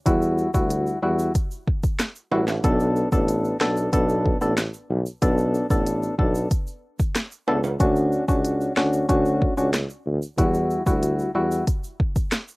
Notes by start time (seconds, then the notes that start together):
0.06 E2 G3 E4 F#4, kick, closed hi-hat, shaker
0.22 shaker
0.38 shaker
0.54 D2 G3 E4 F#4, kick, shaker
0.70 closed hi-hat, shaker
0.87 shaker
1.02 E2 G3 E4 F#4
1.19 shaker
1.35 kick, closed hi-hat, shaker
1.51 shaker
1.67 kick
1.83 kick, shaker
1.99 cross-stick, snare, closed hi-hat, shaker
2.15 shaker
2.31 A1 G3 E4 F#4, high timbale
2.48 snare, high timbale, shaker
2.64 B1 B3 D4 A4, kick, closed hi-hat, shaker
2.80 shaker
2.96 shaker
3.12 A1 B3 D4 A4, kick, shaker
3.28 closed hi-hat, shaker
3.45 shaker
3.61 B1 B3 D4 A4, cross-stick, snare
3.77 shaker
3.93 B1 B3 D4 A4, kick, closed hi-hat, shaker
4.09 shaker
4.26 kick
4.41 A1 B3 D4 A4, shaker
4.57 cross-stick, snare, closed hi-hat, shaker
4.73 shaker
4.90 B1
5.06 shaker
5.22 B1 B3 D4 A4, kick, closed hi-hat, shaker
5.38 shaker
5.54 shaker
5.70 A1 B3 D4 A4, kick, shaker
5.86 closed hi-hat, shaker
6.03 shaker
6.19 B1 B3 D4 A4, kick
6.35 shaker
6.51 kick, closed hi-hat, shaker
6.67 shaker
6.99 kick, shaker
7.15 cross-stick, snare, closed hi-hat, shaker
7.32 shaker
7.48 C#2 B3 D4 A4, high timbale
7.64 high timbale, shaker
7.80 D2 C#4 D4 F#4, kick, closed hi-hat, shaker
7.96 shaker
8.12 shaker
8.28 C#2 C#4 D4 F#4, kick, shaker
8.45 closed hi-hat, shaker
8.61 shaker
8.77 D2 C#4 D4 F#4, cross-stick, snare
8.93 shaker
9.09 D2 C#4 D4 F#4, kick, closed hi-hat, shaker
9.25 shaker
9.42 kick
9.57 C#2 C#4 D4 F#4, shaker
9.74 cross-stick, snare, closed hi-hat, shaker
9.90 shaker
10.06 D2
10.22 shaker
10.38 E2 G3 E4 F#4, kick, closed hi-hat, shaker
10.54 shaker
10.70 shaker
10.86 D2 G3 E4 F#4, kick, shaker
11.03 closed hi-hat, shaker
11.19 shaker
11.35 E2 G3 E4 F#4
11.51 shaker
11.67 kick, closed hi-hat, shaker
11.84 shaker
12.00 kick
12.16 kick, shaker
12.32 cross-stick, snare, closed hi-hat, shaker
12.48 shaker